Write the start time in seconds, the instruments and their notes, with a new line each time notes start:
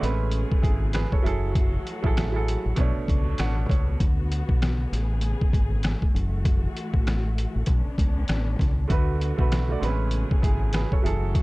Already playing: string section F#3
0.00 fingered electric bass A1, string section C#3 B3 G#4, upright piano G#3 A3 C4 B4, snare, closed hi-hat
0.09 upright piano C#4
0.32 closed hi-hat
0.52 muted fingered electric bass stroke, kick
0.62 fingered electric bass G#1, upright piano E4 G#4, kick, closed hi-hat
0.93 upright piano G#4 B4, cross-stick, snare, closed hi-hat
1.12 upright piano A4 C#5, kick
1.23 fingered electric bass F#1, string section E3 A3 F#4, upright piano F#3 E4 G#4, closed hi-hat
1.27 upright piano A4
1.55 kick, closed hi-hat
1.87 closed hi-hat
2.02 fingered electric bass A1, upright piano F#3 E4 G#4, kick
2.06 upright piano A4
2.17 cross-stick, snare, closed hi-hat
2.32 upright piano F#3 E4 G#4 A4
2.48 closed hi-hat
2.66 fingered electric bass A1
2.76 fingered electric bass B1, upright piano B2 A3 D4 C#5, string section B2 B3 D4, kick, closed hi-hat
2.96 muted fingered electric bass stroke
3.08 fingered electric bass C#2, kick, closed hi-hat
3.38 fingered electric bass A1, upright piano F#5, cross-stick, snare, closed hi-hat
3.69 fingered electric bass C#2, upright piano C#5, kick, closed hi-hat
4.00 fingered electric bass D2, string section D3 F#4, kick, closed hi-hat
4.32 closed hi-hat
4.49 fingered electric bass B1, kick
4.62 cross-stick, snare, closed hi-hat
4.92 fingered electric bass A1, string section C#3 A3 G#4, snare, closed hi-hat
5.21 closed hi-hat
5.41 muted fingered electric bass stroke, kick
5.53 fingered electric bass G#1, kick, closed hi-hat
5.83 cross-stick, snare, closed hi-hat
6.02 kick
6.14 fingered electric bass F#1, string section E3 G#3 F#4, closed hi-hat
6.45 kick, closed hi-hat
6.77 closed hi-hat
6.94 fingered electric bass A1, kick
7.07 cross-stick, snare, closed hi-hat
7.38 closed hi-hat
7.56 fingered electric bass A1
7.66 fingered electric bass B1, string section B3 C#4 D4, kick, closed hi-hat
7.86 muted fingered electric bass stroke
7.98 fingered electric bass C#2, kick, closed hi-hat
8.28 fingered electric bass A1, cross-stick, snare, closed hi-hat
8.59 fingered electric bass C#2, kick, snare, closed hi-hat
8.87 fingered electric bass D2, upright piano D3 A3 F#4 B4, string section D3 F#3 B3 F#4, kick, closed hi-hat
9.21 closed hi-hat
9.36 fingered electric bass B1, upright piano D3 A3 F#4 B4, kick
9.52 cross-stick, snare, closed hi-hat
9.68 upright piano D3 A3 F#4 D5
9.79 fingered electric bass A1, string section C#3 B3 G#4, upright piano G#3 A3 C4 B4, snare, closed hi-hat
9.88 upright piano C#4
10.11 closed hi-hat
10.31 muted fingered electric bass stroke, kick
10.42 fingered electric bass G#1, upright piano E4 G#4, kick, closed hi-hat
10.73 upright piano G#4 B4, cross-stick, snare, closed hi-hat
10.92 upright piano A4 C#5, kick
11.02 fingered electric bass F#1, string section E3 A3 F#4, upright piano F#3 E4 G#4 A4, closed hi-hat
11.35 kick, closed hi-hat